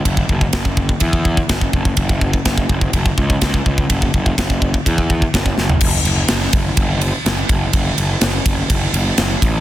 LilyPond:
<<
  \new Staff \with { instrumentName = "Picked electric bass" } { \clef bass \time 4/4 \key fis \minor \tempo 4 = 125 fis,,8 fis,,8 fis,,4 e,4 fis,,8 fis,,8 | fis,,4 fis,,8 fis,,8 fis,,8 cis,8 cis,8 cis,8 | fis,,8 fis,,8 fis,,4 e,4 fis,,8 fis,,8 | fis,,8 fis,,8 fis,,8 fis,,8 fis,,4 fis,,8 fis,,8 |
fis,,8 fis,,8 fis,,8 fis,,8 fis,,8 fis,,8 fis,,8 a,,8 | }
  \new DrumStaff \with { instrumentName = "Drums" } \drummode { \time 4/4 <bd rb>16 bd16 bd16 bd16 <bd rb sn>16 bd16 bd16 bd16 <bd rb>16 bd16 bd16 bd16 <bd rb sn>16 bd16 bd16 bd16 | <bd rb>16 bd16 bd16 bd16 <bd rb sn>16 bd16 bd16 bd16 <bd rb>16 bd16 bd16 bd16 <bd rb sn>16 bd16 bd16 bd16 | <bd rb>16 bd16 bd16 bd16 <bd rb sn>16 bd16 bd16 bd16 <bd rb>16 bd16 bd16 bd16 <bd rb sn>16 bd16 sn16 tomfh16 | <cymc bd>8 cymr8 <cymr sn>8 <bd cymr>8 <bd cymr>8 cymr8 <cymr sn>8 <bd cymr>8 |
<bd cymr>8 cymr8 <cymr sn>8 <bd cymr>8 <bd cymr>8 cymr8 <cymr sn>8 <bd cymr>8 | }
>>